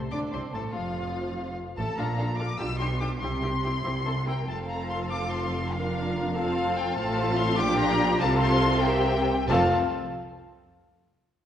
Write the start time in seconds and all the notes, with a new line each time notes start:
Already playing: C2 C3 C5
0.11 D2 D3 D4 D5 D6
0.32 C2 C3 C4 C5 C6
0.53 A1 A2 A3 A4 A5
0.74 F1 F2 F3 F4 F5
1.77 A1 A2 A3 A4 A5
1.98 A#1 A#2 D4 F4 A4 F5 A#5
2.17 D4 F4 A4 F5
2.37 D4 F4 A4 F5 D6
2.58 B1 B2 D4 F4 G4 G5 E6
2.78 D4 F4 G4 G5 C6
3.00 D4 F4 G4 G5 D6
3.21 C2 C3 C4 E4 G4 G5 C6
3.43 C4 E4 G4 G5
3.64 C4 E4 G4 G5
3.84 C2 C3 C4 E4 G4
4.06 C4 E4 A4
4.27 C4 E4 A#4 G5
4.48 F1 F2 C4 F4 A4 F5 A5
4.69 A#5
4.89 C6
5.10 D6
5.30 C6
5.72 D4 F4 A#4 F5
6.35 C4 F4 A4 F5
6.76 G5
6.95 A1 A2 C4 F4 A4 F5 A5
7.37 C6
7.58 A#1 A#2 D4 F4 G4 G5 D6
7.78 A#5
8.19 C2 C3 C4 F4 A4 F5 A5
8.40 C6
8.84 C4 G4 A#4 E5 G5
9.48 F1 F2 C4 F4 A4 F5 A5